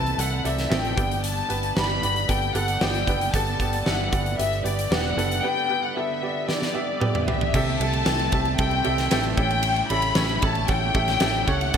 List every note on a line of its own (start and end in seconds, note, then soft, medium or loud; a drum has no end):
0.00 0.14 C2 medium
0.00 0.99 C3 medium
0.00 0.95 E3 medium
0.00 0.95 A3 medium
0.00 0.19 C4 medium
0.00 0.95 C4 medium
0.00 7.50 G4 medium
0.00 0.19 A4 medium
0.00 0.13 B4 medium
0.00 0.20 E5 medium
0.00 0.20 A5 medium
0.07 closed hi-hat soft
0.18 0.40 C2 loud
0.18 0.39 C4 medium
0.18 0.39 A4 medium
0.18 0.39 E5 medium
0.18 0.46 F#5 medium
0.18 closed hi-hat medium
0.44 0.66 C2 medium
0.44 0.64 C4 medium
0.44 0.65 A4 medium
0.44 0.65 D5 medium
0.44 0.73 E5 medium
0.44 closed hi-hat medium
0.58 snare soft
0.58 closed hi-hat soft
0.70 0.92 A1 medium
0.70 0.90 C4 medium
0.70 0.91 A4 medium
0.70 0.91 E5 medium
0.70 1.25 G5 medium
0.70 snare loud
0.85 closed hi-hat soft
0.97 1.41 G1 loud
0.97 1.72 G2 medium
0.97 7.50 D3 medium
0.97 7.50 G3 medium
0.97 1.39 B3 medium
0.97 7.50 B3 medium
0.97 1.40 G4 medium
0.97 1.40 D5 medium
0.97 kick loud
0.97 closed hi-hat medium
1.11 closed hi-hat medium
1.24 1.74 A5 medium
1.24 closed hi-hat medium
1.37 closed hi-hat soft
1.49 1.72 G1 medium
1.49 1.69 B3 medium
1.49 1.69 G4 medium
1.49 1.70 B4 medium
1.49 closed hi-hat medium
1.63 closed hi-hat medium
1.76 1.98 G1 medium
1.76 1.96 B3 medium
1.76 1.96 G4 medium
1.76 1.97 D5 medium
1.76 2.30 B5 loud
1.76 snare loud
2.02 2.24 G1 medium
2.02 2.22 B3 medium
2.02 2.22 G4 medium
2.02 2.23 D5 medium
2.02 closed hi-hat medium
2.16 closed hi-hat soft
2.28 2.51 G1 loud
2.28 2.48 B3 medium
2.28 2.49 G4 medium
2.28 2.49 A4 medium
2.28 2.56 G5 medium
2.28 kick medium
2.28 closed hi-hat medium
2.42 closed hi-hat soft
2.54 2.76 G1 medium
2.54 2.75 B3 medium
2.54 2.75 G4 medium
2.54 2.75 A4 medium
2.54 2.82 F#5 medium
2.54 closed hi-hat medium
2.68 closed hi-hat soft
2.81 3.03 G1 medium
2.81 3.01 B3 medium
2.81 3.02 G4 medium
2.81 3.02 D5 loud
2.81 3.34 G5 medium
2.81 snare loud
2.94 closed hi-hat soft
3.07 3.29 F#1 medium
3.07 3.83 G2 medium
3.07 3.27 B3 medium
3.07 3.28 G4 medium
3.07 3.28 B4 medium
3.07 kick medium
3.07 closed hi-hat medium
3.21 closed hi-hat medium
3.34 3.55 G1 loud
3.34 3.54 B3 medium
3.34 3.54 G4 medium
3.34 3.54 A4 loud
3.34 3.86 A5 medium
3.34 kick medium
3.34 closed hi-hat medium
3.47 closed hi-hat soft
3.60 3.81 G1 medium
3.60 3.80 B3 medium
3.60 3.80 G4 medium
3.60 3.81 D5 medium
3.60 kick medium
3.60 closed hi-hat medium
3.73 closed hi-hat medium
3.86 4.08 G1 loud
3.86 4.06 B3 medium
3.86 4.06 G4 medium
3.86 4.07 E5 medium
3.86 4.39 F#5 medium
3.86 snare medium
4.11 4.34 G1 loud
4.11 4.32 B3 medium
4.11 4.32 G4 medium
4.11 4.33 D5 medium
4.11 kick medium
4.11 closed hi-hat medium
4.26 closed hi-hat soft
4.38 4.61 G1 loud
4.38 4.58 B3 medium
4.38 4.59 G4 medium
4.38 4.59 D5 medium
4.38 4.64 E5 medium
4.38 closed hi-hat medium
4.53 closed hi-hat soft
4.64 4.87 G1 loud
4.64 4.84 B3 medium
4.64 4.84 G4 medium
4.64 4.85 D5 medium
4.64 4.90 D5 medium
4.64 closed hi-hat medium
4.79 closed hi-hat medium
4.91 5.13 E1 medium
4.91 5.11 B3 medium
4.91 5.11 G4 medium
4.91 5.12 D5 medium
4.91 5.45 F#5 medium
4.91 snare loud
5.17 5.39 F#1 medium
5.17 5.92 G2 medium
5.17 5.37 B3 medium
5.17 5.38 G4 medium
5.17 5.38 A4 medium
5.17 closed hi-hat medium
5.31 closed hi-hat medium
5.43 5.63 B3 medium
5.43 5.64 G4 medium
5.43 5.64 B4 loud
5.43 5.84 G5 loud
5.69 5.89 B3 medium
5.69 5.90 G4 medium
5.69 5.90 B4 medium
5.85 5.97 F#5 medium
5.96 6.16 B3 medium
5.96 6.17 G4 medium
5.96 6.17 A4 medium
5.96 6.50 E5 medium
6.22 6.42 B3 medium
6.22 6.43 G4 medium
6.22 6.43 D5 medium
6.48 6.68 B3 medium
6.48 6.68 G4 medium
6.48 6.69 D5 medium
6.48 7.28 D5 medium
6.48 snare medium
6.62 snare soft
6.74 6.94 B3 medium
6.74 6.95 G4 medium
6.74 6.95 E5 medium
7.00 7.21 B3 loud
7.00 7.21 G4 medium
7.00 7.21 D5 loud
7.00 mid tom medium
7.15 mid tom medium
7.27 7.47 B3 medium
7.27 7.47 G4 medium
7.27 7.48 D5 loud
7.27 7.77 E5 medium
7.27 floor tom medium
7.41 floor tom medium
7.54 7.76 C2 loud
7.54 8.29 C3 medium
7.54 9.37 C3 medium
7.54 9.36 G3 medium
7.54 9.36 A3 medium
7.54 7.74 C4 loud
7.54 11.71 E4 medium
7.54 7.74 G4 loud
7.54 7.74 A4 medium
7.54 7.75 E5 loud
7.54 kick medium
7.54 crash medium
7.80 8.02 C2 loud
7.80 8.00 C4 medium
7.80 8.01 G4 medium
7.80 8.01 A4 medium
7.80 8.01 E5 medium
7.80 8.56 A5 medium
7.80 ride medium
7.93 ride soft
8.05 8.28 C2 medium
8.05 8.26 C4 medium
8.05 8.26 G4 medium
8.05 8.26 A4 medium
8.05 8.27 G5 medium
8.05 snare medium
8.05 ride medium
8.19 ride soft
8.32 8.54 C2 loud
8.32 8.53 C4 medium
8.32 8.53 G4 medium
8.32 8.53 A4 medium
8.32 8.54 E5 medium
8.32 kick loud
8.32 ride medium
8.45 ride soft
8.58 8.81 C2 loud
8.58 8.79 C4 medium
8.58 8.79 G4 medium
8.58 8.79 A4 medium
8.58 8.80 E5 medium
8.58 9.11 G5 medium
8.58 kick medium
8.58 ride medium
8.71 ride soft
8.84 9.08 C2 loud
8.84 9.05 C4 medium
8.84 9.05 G4 medium
8.84 9.05 A4 medium
8.84 9.06 E5 loud
8.84 ride medium
8.98 snare soft
8.98 ride soft
9.11 9.33 A1 medium
9.11 9.32 C4 medium
9.11 9.32 G4 medium
9.11 9.32 A4 medium
9.11 9.32 E5 loud
9.11 9.24 G5 medium
9.11 snare loud
9.11 ride medium
9.23 ride soft
9.37 9.81 A1 loud
9.37 10.13 A2 medium
9.37 11.72 C#3 medium
9.37 11.72 G3 medium
9.37 11.77 A3 medium
9.37 9.80 C#4 medium
9.37 9.80 G4 medium
9.37 9.80 A4 medium
9.37 9.80 E5 medium
9.37 9.87 G5 loud
9.37 kick medium
9.37 ride medium
9.51 ride medium
9.63 ride medium
9.76 ride soft
9.90 10.12 A1 loud
9.90 10.10 C#4 medium
9.90 10.10 G4 medium
9.90 10.11 A4 medium
9.90 10.11 E5 medium
9.90 10.44 B5 loud
9.90 ride medium
10.02 ride medium
10.15 10.38 A1 loud
10.15 10.36 C#4 medium
10.15 10.36 G4 medium
10.15 10.36 A4 medium
10.15 10.36 C#5 medium
10.15 snare loud
10.15 ride medium
10.29 ride soft
10.42 10.65 A1 loud
10.42 10.62 C#4 medium
10.42 10.62 G4 medium
10.42 10.63 A4 medium
10.42 10.63 E5 medium
10.42 10.70 A5 medium
10.42 kick loud
10.42 ride medium
10.55 ride soft
10.68 10.91 A1 loud
10.68 10.88 C#4 medium
10.68 10.88 G4 medium
10.68 10.89 A4 medium
10.68 10.89 F#5 medium
10.68 11.49 G5 loud
10.68 kick medium
10.68 ride medium
10.94 11.17 A1 loud
10.94 11.15 C#4 medium
10.94 11.15 G4 medium
10.94 11.15 A4 medium
10.94 11.16 E5 medium
10.94 kick loud
10.94 ride medium
11.08 snare soft
11.08 ride soft
11.20 11.43 A1 medium
11.20 11.41 C#4 medium
11.20 11.41 G4 medium
11.20 11.41 A4 medium
11.20 11.41 E5 loud
11.20 snare loud
11.20 ride medium
11.47 11.69 C#2 medium
11.47 11.68 C#4 medium
11.47 11.67 G4 medium
11.47 11.68 A4 medium
11.47 11.68 C#5 medium
11.47 11.77 F#5 medium
11.47 kick medium
11.47 ride medium
11.61 ride medium
11.74 11.77 D2 loud
11.74 11.77 D4 loud
11.74 11.77 F#4 loud
11.74 kick loud
11.74 ride medium